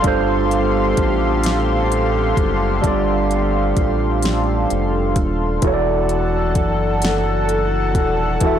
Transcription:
Already playing: A4 F5 C6
0.02 G1 D3 G3 C4 D4 F4 G4, kick, closed hi-hat
0.07 A4 C5
0.51 closed hi-hat
0.97 A1, kick, closed hi-hat
1.43 snare, closed hi-hat
1.92 closed hi-hat
2.37 F#1, kick, closed hi-hat
2.82 G1 G3 D4 F4, kick, closed hi-hat
2.86 A4 D5
3.31 closed hi-hat
3.77 A1, kick, closed hi-hat
4.22 snare, closed hi-hat
4.70 F1, closed hi-hat
5.16 D#1, kick, closed hi-hat
5.62 E1 E3 F#3 D4 E4 F#4 A4 F#5 A5, kick, closed hi-hat
5.66 A4 C#5
5.74 D5
6.09 closed hi-hat
6.55 F#1, kick, closed hi-hat
7.02 snare, closed hi-hat
7.49 closed hi-hat
7.95 D#1, kick, closed hi-hat
8.40 E1 E3 E4 F#4, kick, closed hi-hat
8.45 A4 E5

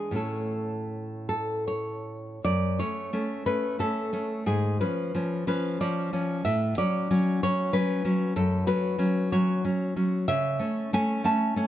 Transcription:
Already playing: G#3 D4 G#4
0.11 A2 A3 C#4
0.16 A4
1.29 A4
1.68 C#5
2.44 F#2 D5
2.79 A3 C#4 C#5
3.13 A3 C#4
3.46 A3 C#4 B4
3.79 A3 C#4 A4
4.13 A3 C#4
4.46 G#2 G#4
4.81 F3 C#4 B4
5.15 F3 C#4
5.47 F3 C#4 B4
5.81 F3 C#4 D5
6.13 F3 C#4
6.45 A2 E5
6.78 F#3 C#4 D5
7.11 F#3 C#4
7.43 F#3 C#4 C#5
7.73 F#3 C#4 B4
8.05 F#3 C#4
8.36 F#2 A4
8.67 F#3 C#4 B4
8.98 F#3 C#4
9.32 F#3 C#4 C#5
9.65 F#3 C#4
9.96 F#3 C#4
10.28 C#3 E5
10.59 A3 C#4
10.93 A3 C#4 G#5
11.24 A3 C#4 A5
11.56 A3 C#4

